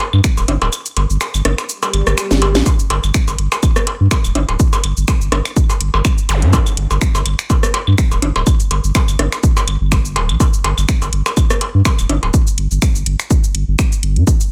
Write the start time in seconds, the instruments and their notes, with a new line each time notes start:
0.00 closed hi-hat, percussion blips
0.13 sub bass G2, claves
0.24 finger snap, kick, shaker
0.37 sub bass D1, percussion blips, shaker
0.48 sub bass G1, closed hi-hat, percussion blips
0.62 sub bass D1, closed hi-hat, percussion blips
0.72 claves, shaker
0.86 closed hi-hat, shaker
0.97 sub bass G1, closed hi-hat, percussion blips
1.10 sub bass G1, shaker
1.21 finger snap, percussion blips, shaker
1.34 sub bass G1, claves, shaker
1.45 sub bass G1, cross-stick, closed hi-hat, percussion blips
1.58 finger snap, percussion blips, shaker
1.69 swell, shaker
1.83 percussion blips, shaker
1.93 sub bass G1, closed hi-hat, claves
2.07 sub bass G1, cross-stick, shaker
2.18 finger snap, percussion blips, shaker
2.31 sub bass G1, snare, shaker
2.42 closed hi-hat, percussion blips
2.55 sub bass A#1, snare, closed hi-hat, claves, shaker
2.66 kick, percussion blips, shaker
2.79 shaker
2.90 sub bass G1, closed hi-hat, percussion blips
3.04 sub bass G1, claves, shaker
3.14 finger snap, kick, shaker
3.28 sub bass G1, percussion blips, shaker
3.39 sub bass G1, closed hi-hat
3.52 finger snap, percussion blips, shaker
3.63 kick, claves, shaker
3.76 cross-stick, shaker
3.87 closed hi-hat, percussion blips
4.00 sub bass G2
4.11 finger snap, kick, percussion blips, shaker
4.24 sub bass D1, claves, shaker
4.35 sub bass G1, closed hi-hat, percussion blips
4.49 sub bass D1, closed hi-hat, percussion blips
4.59 kick, shaker
4.73 percussion blips, shaker
4.84 sub bass G1, closed hi-hat, claves
4.97 sub bass G1, shaker
5.08 finger snap, kick, percussion blips, shaker
5.21 sub bass G1, shaker
5.32 sub bass G1, cross-stick, closed hi-hat, percussion blips
5.45 finger snap, claves, shaker
5.56 kick, shaker
5.70 percussion blips, shaker
5.81 sub bass G1, closed hi-hat
5.94 sub bass G1, percussion blips
6.05 finger snap, kick, claves, shaker
6.18 shaker
6.29 sub bass G1, closed hi-hat, zap, percussion blips
6.42 sub bass G2, closed hi-hat
6.53 kick, percussion blips, shaker
6.66 claves, shaker
6.77 sub bass G1, closed hi-hat
6.91 sub bass G1, percussion blips, shaker
7.01 finger snap, kick, shaker
7.15 sub bass G1, percussion blips, shaker
7.26 sub bass G1, closed hi-hat, claves
7.39 finger snap, shaker
7.50 kick, percussion blips, shaker
7.63 cross-stick, shaker
7.74 closed hi-hat, percussion blips
7.87 sub bass G2, claves
7.98 finger snap, kick, shaker
8.11 sub bass D1, percussion blips, shaker
8.22 sub bass G1, closed hi-hat, percussion blips
8.36 sub bass D1, closed hi-hat, percussion blips
8.47 kick, claves, shaker
8.60 closed hi-hat, shaker
8.71 sub bass G1, closed hi-hat, percussion blips
8.84 sub bass G1, shaker
8.95 finger snap, kick, percussion blips, shaker
9.08 sub bass G1, claves, shaker
9.19 sub bass G1, cross-stick, closed hi-hat, percussion blips
9.32 finger snap, percussion blips, shaker
9.43 kick, shaker
9.57 percussion blips, shaker
9.68 sub bass G1, closed hi-hat, claves
9.81 sub bass G1
9.92 finger snap, kick, percussion blips, shaker
10.05 shaker
10.16 sub bass D1, closed hi-hat, percussion blips
10.29 sub bass A#1, closed hi-hat, claves
10.40 kick, percussion blips, shaker
10.54 shaker
10.64 sub bass G1, closed hi-hat, percussion blips
10.78 sub bass G1, claves, shaker
10.89 finger snap, kick, shaker
11.02 sub bass G1, percussion blips, shaker
11.13 sub bass G1, closed hi-hat
11.26 finger snap, percussion blips, shaker
11.37 kick, claves, shaker
11.50 cross-stick, shaker
11.61 closed hi-hat, percussion blips
11.74 sub bass G2
11.85 finger snap, kick, percussion blips, shaker
11.99 sub bass D1, claves, shaker
12.09 sub bass G1, closed hi-hat, percussion blips
12.23 sub bass D1, closed hi-hat, percussion blips
12.34 kick, shaker
12.47 shaker
12.58 sub bass G1, closed hi-hat
12.71 sub bass G1, shaker
12.82 finger snap, kick, shaker
12.95 sub bass G1, shaker
13.06 sub bass G1, closed hi-hat
13.20 finger snap, shaker
13.30 kick, shaker
13.44 shaker
13.55 sub bass G1, closed hi-hat
13.68 sub bass G1
13.79 finger snap, kick, shaker
13.92 shaker
14.03 sub bass G1, closed hi-hat
14.16 sub bass G2, closed hi-hat
14.27 kick, shaker
14.40 shaker